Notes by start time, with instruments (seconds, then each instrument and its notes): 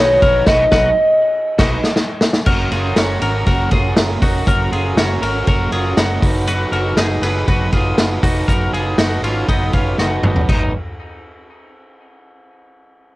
Already playing: fingered electric bass B1, overdriven electric guitar B2 D#3 F#3 B3 D#4, clean electric guitar F#4, soft synth lead C#5
0.00 overdriven electric guitar B4
0.22 fingered electric bass A#1, overdriven electric guitar F#3 B3 D#4 B4, clean electric guitar F#4 A#4, kick, ride
0.46 fingered electric bass B1, overdriven electric guitar B2 D#3 F#3 B3 D#4 B4, clean electric guitar F#4, soft synth lead D#5, kick, snare, crash
0.72 fingered electric bass B1, overdriven electric guitar F#3 B3 D#4 B4, clean electric guitar F#4, kick, snare
1.59 fingered electric bass B1, overdriven electric guitar F#3 B3 D#4 B4, clean electric guitar F#4, kick, snare, crash
1.84 snare
1.96 snare
2.21 snare
2.33 snare
2.46 fingered electric bass F#1, overdriven electric guitar F#3 A#3 C#4 F#4 A#4, kick, crash
2.71 fingered electric bass F#1, overdriven electric guitar C#4 F#4 A#4, clean electric guitar F4 G#4, ride
2.95 fingered electric bass F#1, overdriven electric guitar A#3 C#4 F#4 A#4, snare, ride
3.20 fingered electric bass G#1, overdriven electric guitar C#4 F#4 A#4, ride
3.46 fingered electric bass F#1, overdriven electric guitar F#3 A#3 C#4 F#4 A#4, kick, ride
3.71 fingered electric bass F#1, overdriven electric guitar C#4 F#4 A#4, clean electric guitar F4 G#4, kick, ride
3.96 fingered electric bass F#1, overdriven electric guitar A#3 C#4 F#4 A#4, snare, ride
4.22 fingered electric bass F1, overdriven electric guitar C#4 F#4 A#4, clean electric guitar D#4, kick, open hi-hat, ride
4.46 fingered electric bass F#1, overdriven electric guitar F#3 A#3 C#4 F#4 A#4, kick, hi-hat pedal, ride
4.71 fingered electric bass F#1, overdriven electric guitar C#4 F#4 A#4, clean electric guitar F4 G#4, ride
4.96 fingered electric bass F#1, overdriven electric guitar A#3 C#4 F#4 A#4, snare, ride
5.21 fingered electric bass G#1, overdriven electric guitar C#4 F#4 A#4, ride
5.47 fingered electric bass F#1, overdriven electric guitar F#3 A#3 C#4 F#4 A#4, kick, ride
5.71 fingered electric bass F#1, overdriven electric guitar C#4 F#4 A#4, clean electric guitar F4 G#4, ride
5.97 fingered electric bass F#1, overdriven electric guitar A#3 C#4 F#4 A#4, clean electric guitar D#4, snare, ride
6.22 fingered electric bass F#1, overdriven electric guitar D#4 F#4 B4, kick, open hi-hat, ride
6.47 overdriven electric guitar F#3 B3 D#4 F#4 B4, hi-hat pedal, ride
6.72 fingered electric bass F#1, overdriven electric guitar D#4 F#4 B4, clean electric guitar A#4, ride
6.96 fingered electric bass F#1, overdriven electric guitar B3 D#4 F#4 B4, clean electric guitar G#4, snare, ride
7.21 fingered electric bass F#1, overdriven electric guitar D#4 F#4 B4, clean electric guitar G#4, snare, ride
7.47 fingered electric bass F#1, overdriven electric guitar F#3 B3 D#4 F#4 B4, kick, ride
7.72 fingered electric bass F#1, overdriven electric guitar D#4 F#4 B4, clean electric guitar F4 G#4, kick, ride
7.97 fingered electric bass F#1, overdriven electric guitar B3 D#4 F#4 B4, snare, ride
8.22 fingered electric bass F1, overdriven electric guitar D#4 F#4 B4, kick, open hi-hat, ride
8.48 fingered electric bass F#1, overdriven electric guitar F#3 B3 D#4 F#4 B4, clean electric guitar A#4, kick, hi-hat pedal, ride
8.72 fingered electric bass F#1, overdriven electric guitar D#4 F#4 B4, clean electric guitar F4 G#4, ride
8.98 fingered electric bass F#1, overdriven electric guitar B3 D#4 F#4 B4, snare, ride
9.22 fingered electric bass G#1, clean electric guitar C#4 F4, overdriven electric guitar D#4 F#4 B4, ride
9.48 fingered electric bass F#1, overdriven electric guitar F#3 B3 D#4 F#4 B4, kick, ride
9.73 fingered electric bass F#1, clean electric guitar C#4 F4, overdriven electric guitar D#4 F#4 B4, kick, ride
9.98 fingered electric bass F#1, overdriven electric guitar B3 D#4 F#4 B4, snare
10.22 fingered electric bass F#1, overdriven electric guitar D#4 F#4 B4, mid tom
10.36 floor tom
10.49 fingered electric bass G#1, overdriven electric guitar G#2 D#3 F#3 B3 D#4 B4, kick, crash